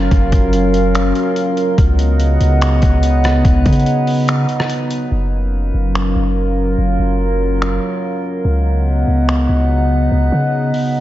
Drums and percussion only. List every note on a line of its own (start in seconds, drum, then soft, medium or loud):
0.11 kick loud
0.11 closed hi-hat medium
0.32 kick loud
0.32 closed hi-hat medium
0.53 closed hi-hat medium
0.74 closed hi-hat medium
0.95 finger snap loud
0.95 closed hi-hat medium
1.15 closed hi-hat medium
1.36 closed hi-hat medium
1.57 closed hi-hat medium
1.78 kick loud
1.78 closed hi-hat medium
1.99 closed hi-hat medium
2.20 closed hi-hat medium
2.41 closed hi-hat medium
2.62 finger snap loud
2.62 closed hi-hat medium
2.82 kick medium
2.82 closed hi-hat medium
3.03 closed hi-hat medium
3.24 cross-stick loud
3.24 closed hi-hat medium
3.45 kick loud
3.45 closed hi-hat medium
3.66 kick loud
3.66 closed hi-hat medium
3.73 closed hi-hat medium
3.79 closed hi-hat soft
3.86 closed hi-hat medium
4.07 open hi-hat medium
4.28 finger snap loud
4.28 closed hi-hat medium
4.49 closed hi-hat medium
4.60 cross-stick loud
4.70 closed hi-hat medium
4.91 closed hi-hat medium
5.95 finger snap loud
7.62 finger snap loud
9.29 finger snap loud
10.74 open hi-hat medium